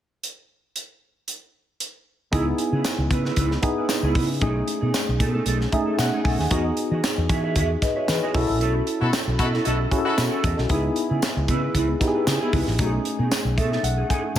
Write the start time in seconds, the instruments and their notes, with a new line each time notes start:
0.23 closed hi-hat
0.76 closed hi-hat
1.28 closed hi-hat
1.80 closed hi-hat
2.32 fretless electric bass C#2, tine electric piano B3 D#4 E4 G#4, clean electric guitar B3 E4 G#4, kick, closed hi-hat
2.48 muted clean electric guitar stroke
2.58 muted clean electric guitar stroke, closed hi-hat
2.72 fretless electric bass C#3, clean electric guitar B3 E4 G#4
2.84 muted clean electric guitar stroke, snare, closed hi-hat, tambourine
2.98 fretless electric bass C#2, muted clean electric guitar stroke
3.10 fretless electric bass C#3, clean electric guitar B3 E4 B4, kick, closed hi-hat
3.25 clean electric guitar B3 E4 B4, snare
3.36 fretless electric bass C#2, clean electric guitar B3 E4 B4, kick, closed hi-hat
3.51 muted clean electric guitar stroke, snare
3.62 tine electric piano B3 D#4 E4 G#4, muted clean electric guitar stroke, kick, closed hi-hat
3.78 clean electric guitar B3 E4 B4
3.89 muted clean electric guitar stroke, snare, closed hi-hat, tambourine
4.03 fretless electric bass C#2, clean electric guitar B3 E4 G#4
4.15 fretless electric bass C#3, clean electric guitar B3 E4 B4, kick, open hi-hat
4.30 muted clean electric guitar stroke
4.41 fretless electric bass B1, tine electric piano A3 C#4 D#4 G#4, clean electric guitar A3 D#4 G#4, kick, closed hi-hat
4.56 muted clean electric guitar stroke
4.68 muted clean electric guitar stroke, closed hi-hat
4.81 fretless electric bass B2, clean electric guitar A3 D#4 G#4
4.94 muted clean electric guitar stroke, snare, closed hi-hat, tambourine
5.08 fretless electric bass B1, muted clean electric guitar stroke
5.19 fretless electric bass B2, clean electric guitar A3 D#4 A4, kick, closed hi-hat
5.34 clean electric guitar A3 D#4 A4
5.46 fretless electric bass B1, clean electric guitar A3 D#4 A4, closed hi-hat
5.60 muted clean electric guitar stroke, snare
5.72 tine electric piano A3 C#4 D#4 G#4 E5, muted clean electric guitar stroke, kick, closed hi-hat
5.86 clean electric guitar A3 D#4 A4
5.99 fretless electric bass B2, tine electric piano F#5, muted clean electric guitar stroke, snare, closed hi-hat, tambourine
6.13 clean electric guitar A3 D#4 G#4
6.24 fretless electric bass B1, clean electric guitar A3 D#4 A4, tine electric piano G#5, kick, open hi-hat
6.39 fretless electric bass D#2, muted clean electric guitar stroke, snare
6.50 fretless electric bass E2, tine electric piano B3 D#4 F#4 G#4, clean electric guitar F#4 G#4 D#5, kick, closed hi-hat
6.65 muted clean electric guitar stroke
6.77 muted clean electric guitar stroke, closed hi-hat
6.91 fretless electric bass E3, clean electric guitar F#4 G#4 D#5
7.03 muted clean electric guitar stroke, snare, closed hi-hat, tambourine
7.18 fretless electric bass E2, muted clean electric guitar stroke
7.29 fretless electric bass E3, clean electric guitar F#4 G#4 E5, kick, closed hi-hat
7.44 clean electric guitar F#4 G#4 E5
7.56 fretless electric bass E2, clean electric guitar F#4 G#4 E5, kick, closed hi-hat
7.71 muted clean electric guitar stroke
7.82 tine electric piano B4 D#5, muted clean electric guitar stroke, kick, snare, closed hi-hat
7.96 clean electric guitar F#4 G#4 E5, tine electric piano C#5
8.08 fretless electric bass E3, tine electric piano G#4 B4, muted clean electric guitar stroke, snare, closed hi-hat, tambourine
8.23 tine electric piano E4 G#4, clean electric guitar F#4 G#4 D#5
8.34 fretless electric bass B1, tine electric piano C#4 E4 F#4 A4, clean electric guitar E4 A4 D#5, kick, open hi-hat
8.49 fretless electric bass A1, muted clean electric guitar stroke
8.61 fretless electric bass B1, clean electric guitar E4 A4 C#5, closed hi-hat
8.75 muted clean electric guitar stroke
8.87 muted clean electric guitar stroke, closed hi-hat
9.01 fretless electric bass B2, horn section E4 F#4 A4, clean electric guitar E4 A4 C#5
9.13 muted clean electric guitar stroke, snare, closed hi-hat, tambourine
9.27 fretless electric bass B1, muted clean electric guitar stroke
9.39 fretless electric bass B2, horn section E4 F#4 A4, clean electric guitar E4 A4 D#5, kick, closed hi-hat
9.53 clean electric guitar E4 A4 D#5, snare
9.64 fretless electric bass B1, horn section E4 F#4 A4, clean electric guitar E4 A4 D#5, closed hi-hat
9.80 muted clean electric guitar stroke
9.91 tine electric piano C#4 E4 F#4 G#4, muted clean electric guitar stroke, kick, closed hi-hat
9.99 tine electric piano A4
10.05 horn section E4 F#4 A4, clean electric guitar E4 A4 D#5
10.17 fretless electric bass B2, muted clean electric guitar stroke, snare, closed hi-hat, tambourine
10.31 clean electric guitar E4 A4 C#5
10.44 fretless electric bass E2, clean electric guitar E4 A4 D#5, kick, closed hi-hat
10.58 fretless electric bass B1, muted clean electric guitar stroke, snare
10.69 fretless electric bass C#2, tine electric piano B3 D#4 E4 G#4, clean electric guitar B3 E4 G#4, kick, closed hi-hat
10.85 muted clean electric guitar stroke
10.96 muted clean electric guitar stroke, closed hi-hat
11.10 fretless electric bass C#3, clean electric guitar B3 E4 G#4
11.22 muted clean electric guitar stroke, snare, closed hi-hat, tambourine
11.36 fretless electric bass C#2, muted clean electric guitar stroke
11.48 fretless electric bass C#3, clean electric guitar B3 E4 B4, kick, closed hi-hat
11.63 clean electric guitar B3 E4 B4
11.74 fretless electric bass C#2, clean electric guitar B3 E4 B4, kick, closed hi-hat
11.89 muted clean electric guitar stroke
12.00 tine electric piano B3 D#4 E4 G4, muted clean electric guitar stroke, kick, snare, closed hi-hat
12.07 tine electric piano G#4
12.15 clean electric guitar B3 E4 B4
12.27 fretless electric bass C#3, muted clean electric guitar stroke, snare, closed hi-hat, tambourine
12.41 clean electric guitar B3 E4 G#4
12.52 fretless electric bass C#2, clean electric guitar B3 E4 B4, kick, open hi-hat
12.67 fretless electric bass A1, muted clean electric guitar stroke, snare
12.79 fretless electric bass B1, clean electric guitar A3 D#4 G#4, tine electric piano A3 C#4 D#4 F#4, kick, closed hi-hat
12.86 tine electric piano G#4
12.92 muted clean electric guitar stroke
13.04 muted clean electric guitar stroke, closed hi-hat
13.19 fretless electric bass B2, clean electric guitar A3 D#4 G#4
13.31 muted clean electric guitar stroke, snare, closed hi-hat, tambourine
13.45 fretless electric bass B1, muted clean electric guitar stroke
13.57 fretless electric bass B2, clean electric guitar A3 D#4 A4, tine electric piano E5, kick, closed hi-hat
13.72 clean electric guitar A3 D#4 A4, snare
13.83 fretless electric bass B1, tine electric piano F#5, muted clean electric guitar stroke, closed hi-hat
13.97 clean electric guitar A3 D#4 G#4
14.09 clean electric guitar A3 D#4 G#4, tine electric piano G#5, kick, closed hi-hat
14.24 muted clean electric guitar stroke
14.35 fretless electric bass B2, tambourine